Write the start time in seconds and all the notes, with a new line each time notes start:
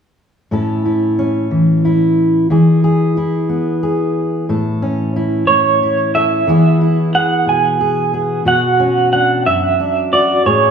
0.51 A2 C#4 E4 A4
0.85 E4
1.19 C#4
1.51 E3
1.85 E4
2.50 E3 E4 G#4
2.84 G#4
3.17 E4
3.49 B3
3.83 G#4
4.49 A2 A4
4.82 C#4
5.16 E4
5.47 A2 C#5
5.83 E4
6.15 A4 E5
6.47 E3 B3 E4 G#4
6.81 E4
7.15 G#4 F#5
7.46 B2 G#5
7.81 G#4
8.14 G#4
8.45 B2 F#4 F#5
8.80 C#4
9.13 D4 F#5
9.45 F#2 E5
9.80 D4
10.13 F#4 D5
10.46 A2 G#4 C#5